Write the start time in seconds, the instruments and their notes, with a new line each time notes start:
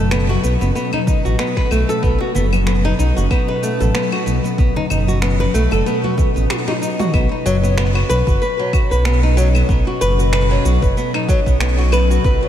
Already playing: analog synth bass F#1, ambient pad B2 F#3 C#4 A4 D#5
0.11 nylon-string guitar B3, finger snap, claves, shaker
0.29 nylon-string guitar F#4, high bongo, high conga
0.44 analog synth bass B1, nylon-string guitar B3, shaker
0.61 analog synth bass F#1, nylon-string guitar B3, high bongo, shaker
0.75 nylon-string guitar B3, shaker
0.93 nylon-string guitar D#4, high conga, claves
1.07 nylon-string guitar D#4, kick, low conga, shaker
1.25 analog synth bass A1, nylon-string guitar F#4, shaker
1.39 nylon-string guitar B3, finger snap, shaker
1.57 nylon-string guitar B4, finger snap, kick
1.71 analog synth bass B1, nylon-string guitar A3, claves, shaker
1.89 nylon-string guitar A4, high bongo, shaker
2.03 analog synth bass B1, nylon-string guitar B3, kick, shaker
2.21 nylon-string guitar F#4, high bongo
2.35 analog synth bass F#1, nylon-string guitar B3, low conga, shaker
2.53 nylon-string guitar B3, high conga, claves, shaker
2.67 nylon-string guitar B3, finger snap, shaker
2.85 nylon-string guitar D#4, high bongo, high conga
2.99 analog synth bass B1, nylon-string guitar D#4, shaker
3.16 analog synth bass F#1, nylon-string guitar F#4, high bongo, shaker
3.31 nylon-string guitar B3, kick, claves, shaker
3.48 nylon-string guitar B4, high bongo
3.63 nylon-string guitar A3, shaker
3.80 analog synth bass A1, nylon-string guitar A4, high bongo, high conga, shaker
3.94 nylon-string guitar B3, finger snap, shaker
4.12 nylon-string guitar F#4, claves
4.26 analog synth bass B1, nylon-string guitar B3, shaker
4.44 nylon-string guitar B3, shaker
4.58 analog synth bass B1, nylon-string guitar B3, kick, shaker
4.76 nylon-string guitar D#4, high bongo, low conga
4.90 analog synth bass F#1, nylon-string guitar D#4, low conga, claves, shaker
5.07 nylon-string guitar F#4, high conga, shaker
5.22 nylon-string guitar B3, finger snap, shaker
5.40 nylon-string guitar B4, high bongo, high conga
5.54 analog synth bass B1, nylon-string guitar A3, shaker
5.71 analog synth bass F#1, nylon-string guitar A4, high bongo, claves, shaker
5.86 nylon-string guitar B3, shaker
6.04 nylon-string guitar F#4, high conga
6.17 nylon-string guitar B3, kick, high bongo, low conga, shaker
6.36 analog synth bass A1, nylon-string guitar B3, shaker
6.50 nylon-string guitar B3, finger snap, high tom, claves, shaker
6.68 nylon-string guitar D#4, finger snap, high tom
6.82 nylon-string guitar D#4, shaker
6.99 nylon-string guitar F#4, mid tom, high bongo, shaker
7.13 analog synth bass B1, ambient pad B2, nylon-string guitar B3, kick, claves, shaker
7.32 nylon-string guitar D#4
7.46 analog synth bass F#1, nylon-string guitar F#3, ambient pad F#3 C#4, shaker
7.63 nylon-string guitar B3, shaker
7.77 nylon-string guitar B3, ambient pad A4, finger snap, shaker
7.95 nylon-string guitar F#4, claves
8.09 analog synth bass B1, nylon-string guitar B4, shaker
8.27 analog synth bass F#1, nylon-string guitar F#4, kick, shaker
8.42 nylon-string guitar B4, shaker
8.59 nylon-string guitar F#3
8.66 ambient pad D#5
8.73 nylon-string guitar F#4, kick, claves, shaker
8.91 analog synth bass B1, nylon-string guitar B4, shaker
9.05 nylon-string guitar B3, finger snap, shaker
9.23 nylon-string guitar D#4
9.37 nylon-string guitar F#3, shaker
9.55 nylon-string guitar B3, claves, shaker
9.69 analog synth bass B1, nylon-string guitar B3, kick, shaker
9.87 nylon-string guitar F#4
10.01 analog synth bass F#1, nylon-string guitar B4, shaker
10.19 nylon-string guitar F#4, shaker
10.33 nylon-string guitar B4, finger snap, claves, shaker
10.51 nylon-string guitar F#3
10.65 analog synth bass B1, nylon-string guitar F#4, shaker
10.82 analog synth bass F#1, nylon-string guitar B4, kick, shaker
10.97 nylon-string guitar B3, shaker
11.14 nylon-string guitar D#4, finger snap, claves
11.29 nylon-string guitar F#3, kick, shaker
11.46 analog synth bass B1, nylon-string guitar B3, kick, shaker
11.60 nylon-string guitar B3, finger snap, shaker
11.78 nylon-string guitar F#4
11.92 nylon-string guitar B4, claves, shaker
12.10 nylon-string guitar F#4, shaker
12.24 analog synth bass B1, nylon-string guitar B4, kick, shaker
12.43 nylon-string guitar F#3